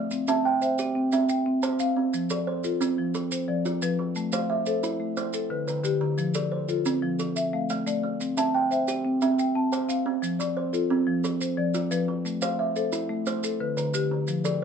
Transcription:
Already playing: marimba A3 D5, kalimba A3 F5
0.11 marimba C4, maracas
0.28 kalimba C4 E5, marimba A5, maracas
0.45 kalimba G5
0.62 marimba C5 E5, maracas
0.78 kalimba G4, maracas
0.95 marimba C4
1.12 kalimba C4 E5, maracas
1.29 marimba G5, maracas
1.46 marimba C4
1.63 kalimba C5 A5, maracas
1.79 marimba C4 F5, maracas
1.97 kalimba C4
2.13 marimba F3, maracas
2.30 kalimba F3 A4, marimba D5, maracas
2.47 kalimba C5
2.64 marimba F4 A4, maracas
2.81 kalimba C4, maracas
2.98 marimba F3
3.15 kalimba F3 A4, maracas
3.31 marimba C5, maracas
3.48 marimba F3 D5
3.65 kalimba F4 D5, maracas
3.82 marimba F3 B4, maracas
3.99 kalimba F3
4.15 marimba A3, maracas
4.32 kalimba A3 C5, marimba F5, maracas
4.50 kalimba E5
4.66 marimba A4 C5, maracas
4.83 kalimba E4, maracas
5.00 marimba A3
5.17 kalimba A3 C5, maracas
5.33 marimba A4, maracas
5.50 marimba D3 B4
5.68 kalimba D3 B4, maracas
5.84 marimba D3 G4, maracas
6.01 kalimba D3
6.18 marimba F3, maracas
6.34 kalimba F3 A4, marimba D5, maracas
6.52 kalimba C5
6.69 marimba F4 A4, maracas
6.86 kalimba C4, maracas
7.02 marimba F3
7.19 kalimba F3 A4, maracas
7.36 marimba E5, maracas
7.53 marimba A3 F5
7.70 kalimba A3 F5, maracas
7.87 marimba A3 D5, maracas
8.04 kalimba A3
8.21 marimba C4, maracas
8.37 kalimba C4 E5, marimba A5, maracas
8.54 kalimba G5
8.71 marimba C5 E5, maracas
8.88 kalimba G4, maracas
9.05 marimba C4
9.21 kalimba C4 E5, maracas
9.38 marimba G5, maracas
9.55 marimba C4 A5
9.72 kalimba C5 A5, maracas
9.89 marimba C4 F5, maracas
10.06 kalimba C4
10.22 marimba F3, maracas
10.39 kalimba F3, marimba D5, maracas
10.57 kalimba C5
10.73 marimba F4 A4, maracas
10.90 kalimba C4
11.07 marimba F3
11.24 kalimba F3 A4, maracas
11.41 marimba C5, maracas
11.57 marimba F3 D5
11.74 kalimba F4 D5, maracas
11.91 marimba F3 B4, maracas
12.08 kalimba F3
12.25 marimba A3, maracas
12.42 kalimba A3 C5, marimba F5, maracas
12.59 kalimba E5
12.76 marimba A4 C5, maracas
12.92 kalimba E4, maracas
13.09 marimba A3
13.26 kalimba A3 C5, maracas
13.43 marimba A4, maracas
13.60 marimba D3 B4
13.77 kalimba D3 B4, maracas
13.94 marimba D3 G4, maracas
14.11 kalimba D3
14.28 marimba F3, maracas
14.44 kalimba F3 A4, marimba D5, maracas

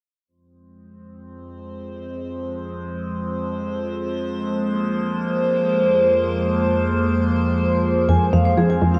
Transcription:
0.28 ambient pad F2 F3 G#3 C4 C5
4.18 ambient pad A#3
8.08 ambient pad F2 F3 G#3 C4 C5, synth arpeggio sound F2, vibraphone G#5
8.33 synth arpeggio sound F2, vibraphone F5
8.45 vibraphone C5
8.57 synth arpeggio sound F3, vibraphone G#4
8.70 vibraphone G#5
8.82 synth arpeggio sound F2
8.94 vibraphone F5

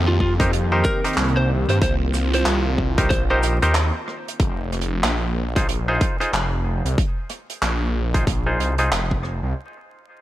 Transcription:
Already playing: detuned saw bass F2, analog synth pad D#3 A#3 C4 G4
0.08 lead electric guitar F4
0.20 lead electric guitar F4, kick
0.40 clav D#4 G4 A#4 C5, kick, closed hi-hat
0.53 closed hi-hat
0.72 clav D#4 G4 A#4 C5
0.84 lead electric guitar A#4, kick, shaker
1.04 clav D#4 G4 A#4 C5, closed hi-hat
1.06 closed hi-hat
1.13 detuned saw bass C2, closed hi-hat
1.17 clap, closed hi-hat
1.24 closed hi-hat
1.28 closed hi-hat
1.37 lead electric guitar C5
1.69 detuned saw bass G2, lead electric guitar C5, closed hi-hat
1.81 detuned saw bass C2, analog synth pad F4, lead electric guitar C5, kick, closed hi-hat
2.14 detuned saw bass C2, cross-stick, closed hi-hat, shaker
2.34 lead electric guitar C5, closed hi-hat
2.45 detuned saw bass C2, clap, closed hi-hat
2.78 kick
2.98 clav D#4 G4 A#4 C5, kick, closed hi-hat
3.10 detuned saw bass A#1, lead electric guitar C5, kick, closed hi-hat
3.30 clav D#4 G4 A#4 C5, lead electric guitar C5
3.43 closed hi-hat, shaker
3.62 detuned saw bass D#2, clav D#4 G4 A#4 C5, closed hi-hat
3.75 clap, closed hi-hat
4.08 cross-stick
4.28 closed hi-hat
4.40 detuned saw bass F1, kick, closed hi-hat
4.72 cross-stick, closed hi-hat
4.81 closed hi-hat
5.04 detuned saw bass A#1, clap, closed hi-hat
5.56 clav D#4 F4 G#4 C5, kick, closed hi-hat
5.69 closed hi-hat
5.88 clav D#4 F4 G#4 C5
6.01 kick, closed hi-hat
6.20 clav D#4 F4 G#4 C5, closed hi-hat
6.33 detuned saw bass F1, clap, closed hi-hat
6.85 detuned saw bass C2, closed hi-hat
6.98 kick, closed hi-hat
7.29 cross-stick, closed hi-hat
7.50 closed hi-hat
7.62 detuned saw bass A#1, clap, closed hi-hat
8.14 clav D#4 F4 G#4 C5, kick, closed hi-hat
8.27 kick, closed hi-hat
8.46 clav D#4 F4 G#4 C5
8.59 detuned saw bass C2, closed hi-hat
8.78 clav D#4 F4 G#4 C5, closed hi-hat
8.91 detuned saw bass F1, clap, closed hi-hat
9.11 kick
9.23 cross-stick
9.43 detuned saw bass C2

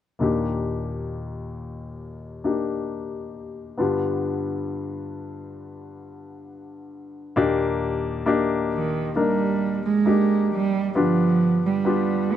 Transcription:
0.19 grand piano D#2 A#2 A#3 D4 D#4 G4
2.44 grand piano A#3 D4 D#4 G4
3.78 grand piano G2 D3 B3 D4 F4 G4
7.36 grand piano D#2 A#2 A#3 D4 D#4 G4
8.26 grand piano A#3 D4 D#4 G4
8.74 cello D#3
9.16 cello G3, grand piano A#3 D4 D#4 A#4
9.85 cello G#3
10.05 grand piano A#3 D4 D#4 G4
10.54 cello G3
10.95 grand piano G2 D3 B3 D4 F4 G4, cello F3
11.66 cello G3
11.85 grand piano B3 D4 F4 G4
12.33 cello B3

